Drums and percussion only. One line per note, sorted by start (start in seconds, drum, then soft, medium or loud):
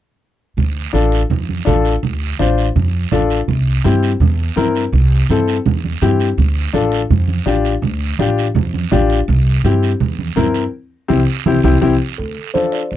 0.58 low conga medium
0.58 long guiro medium
0.94 high conga medium
0.94 short guiro medium
1.12 short guiro medium
1.31 low conga medium
1.31 long guiro medium
1.49 high conga medium
1.66 high conga medium
1.66 low conga medium
1.66 short guiro medium
1.85 short guiro medium
2.03 low conga medium
2.03 long guiro medium
2.39 high conga medium
2.39 short guiro medium
2.58 short guiro medium
2.76 low conga medium
2.76 long guiro medium
3.12 high conga medium
3.12 low conga medium
3.12 short guiro medium
3.30 short guiro medium
3.48 low conga medium
3.48 long guiro medium
3.84 high conga medium
3.84 short guiro medium
4.03 short guiro medium
4.21 low conga medium
4.21 long guiro medium
4.57 high conga medium
4.57 short guiro medium
4.75 short guiro medium
4.93 low conga medium
4.93 long guiro medium
5.29 high conga medium
5.29 short guiro medium
5.48 short guiro medium
5.66 low conga medium
5.66 long guiro medium
5.84 high conga medium
6.02 high conga medium
6.02 short guiro medium
6.20 short guiro medium
6.38 low conga medium
6.38 long guiro medium
6.74 high conga medium
6.74 short guiro medium
6.92 short guiro medium
7.11 low conga medium
7.11 long guiro medium
7.28 high conga medium
7.46 high conga medium
7.46 short guiro medium
7.65 short guiro medium
7.83 low conga medium
7.83 long guiro medium
8.19 high conga medium
8.19 short guiro medium
8.38 short guiro medium
8.56 low conga medium
8.56 long guiro medium
8.74 high conga medium
8.92 high conga medium
8.92 low conga medium
8.92 short guiro medium
9.10 short guiro medium
9.28 low conga medium
9.28 long guiro medium
9.65 high conga medium
9.65 short guiro medium
9.83 short guiro medium
10.00 low conga medium
10.00 long guiro medium
10.19 high conga medium
10.37 high conga medium
10.37 low conga medium
10.37 short guiro medium
10.54 short guiro medium
11.10 high conga loud
11.10 long guiro medium
11.45 high conga loud
11.45 long guiro medium
11.63 high conga medium
11.63 long guiro loud
11.82 high conga loud
11.82 long guiro loud
12.17 long guiro medium
12.55 high conga medium
12.55 short guiro medium
12.72 short guiro medium
12.91 long guiro medium